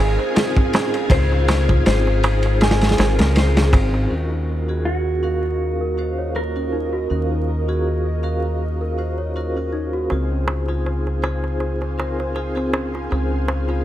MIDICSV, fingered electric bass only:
0, 0, Header, 1, 2, 480
1, 0, Start_track
1, 0, Tempo, 750000
1, 708, Time_signature, 4, 2, 24, 8
1, 8860, End_track
2, 0, Start_track
2, 0, Title_t, "Fingered electric bass"
2, 0, Program_c, 0, 33
2, 0, Note_on_c, 0, 32, 97
2, 107, Note_off_c, 0, 32, 0
2, 704, Note_on_c, 0, 37, 91
2, 1165, Note_off_c, 0, 37, 0
2, 1194, Note_on_c, 0, 32, 89
2, 1890, Note_off_c, 0, 32, 0
2, 1912, Note_on_c, 0, 32, 92
2, 2026, Note_off_c, 0, 32, 0
2, 2041, Note_on_c, 0, 37, 89
2, 2389, Note_on_c, 0, 32, 94
2, 2398, Note_off_c, 0, 37, 0
2, 2602, Note_off_c, 0, 32, 0
2, 2630, Note_on_c, 0, 39, 71
2, 4527, Note_off_c, 0, 39, 0
2, 4550, Note_on_c, 0, 39, 72
2, 6447, Note_off_c, 0, 39, 0
2, 6473, Note_on_c, 0, 37, 72
2, 8369, Note_off_c, 0, 37, 0
2, 8396, Note_on_c, 0, 37, 73
2, 8860, Note_off_c, 0, 37, 0
2, 8860, End_track
0, 0, End_of_file